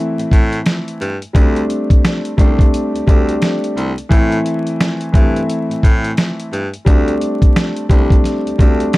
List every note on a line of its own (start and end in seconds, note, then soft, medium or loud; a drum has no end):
0.00 1.05 E3 medium
0.00 1.06 A3 medium
0.00 1.06 C4 medium
0.00 1.07 E4 loud
0.18 0.24 A2 soft
0.18 closed hi-hat medium
0.32 0.60 A2 medium
0.32 kick medium
0.32 closed hi-hat medium
0.53 closed hi-hat medium
0.66 snare loud
0.66 closed hi-hat medium
0.88 closed hi-hat medium
1.01 1.18 G2 medium
1.01 closed hi-hat medium
1.22 closed hi-hat medium
1.33 1.63 D2 loud
1.33 2.31 G3 medium
1.33 2.31 A3 medium
1.33 2.32 C4 medium
1.33 2.32 D4 medium
1.33 kick loud
1.33 closed hi-hat loud
1.56 closed hi-hat medium
1.70 closed hi-hat medium
1.90 kick loud
1.90 closed hi-hat medium
2.05 snare loud
2.05 closed hi-hat medium
2.25 closed hi-hat medium
2.37 2.66 C2 medium
2.37 3.02 G3 medium
2.37 3.03 A3 medium
2.37 3.03 C4 medium
2.37 3.04 D4 loud
2.37 kick medium
2.37 closed hi-hat medium
2.59 kick loud
2.59 closed hi-hat medium
2.74 closed hi-hat loud
2.94 3.00 D2 soft
2.94 closed hi-hat medium
3.06 3.35 D2 medium
3.06 3.88 G3 loud
3.06 3.89 A3 medium
3.06 3.89 C4 medium
3.06 3.90 D4 medium
3.06 kick medium
3.06 closed hi-hat medium
3.29 closed hi-hat medium
3.42 snare loud
3.42 closed hi-hat medium
3.64 closed hi-hat medium
3.77 3.94 C2 medium
3.77 closed hi-hat medium
3.98 closed hi-hat medium
4.09 4.39 A2 loud
4.09 5.07 E3 loud
4.09 5.07 A3 medium
4.09 5.08 C4 medium
4.09 5.08 E4 loud
4.09 kick loud
4.09 closed hi-hat loud
4.32 closed hi-hat medium
4.46 closed hi-hat medium
4.67 closed hi-hat medium
4.81 snare loud
4.81 closed hi-hat medium
5.01 closed hi-hat medium
5.12 5.42 G2 medium
5.12 6.57 E3 medium
5.12 6.58 A3 medium
5.12 6.58 C4 medium
5.12 6.59 E4 loud
5.12 kick medium
5.12 closed hi-hat medium
5.36 closed hi-hat medium
5.50 closed hi-hat loud
5.70 5.75 A2 soft
5.70 closed hi-hat medium
5.83 6.11 A2 medium
5.83 kick medium
5.83 closed hi-hat medium
6.04 closed hi-hat medium
6.17 snare loud
6.17 closed hi-hat medium
6.40 closed hi-hat medium
6.52 6.69 G2 loud
6.52 closed hi-hat medium
6.74 closed hi-hat medium
6.85 7.15 D2 loud
6.85 7.83 G3 medium
6.85 7.83 A3 medium
6.85 7.84 C4 medium
6.85 7.84 D4 loud
6.85 kick loud
6.85 closed hi-hat loud
7.08 closed hi-hat soft
7.21 closed hi-hat medium
7.42 kick medium
7.42 closed hi-hat medium
7.56 snare loud
7.56 closed hi-hat medium
7.76 closed hi-hat medium
7.89 8.18 C2 medium
7.89 8.54 G3 medium
7.89 8.55 A3 medium
7.89 8.55 C4 medium
7.89 8.56 D4 loud
7.89 kick medium
7.89 closed hi-hat medium
8.10 kick medium
8.10 closed hi-hat medium
8.24 snare soft
8.24 closed hi-hat loud
8.46 8.51 D2 soft
8.46 closed hi-hat medium
8.58 8.87 D2 medium
8.58 8.98 G3 loud
8.58 8.98 A3 medium
8.58 8.98 C4 medium
8.58 8.98 D4 loud
8.58 kick medium
8.58 closed hi-hat medium
8.80 closed hi-hat medium
8.93 snare loud
8.93 closed hi-hat medium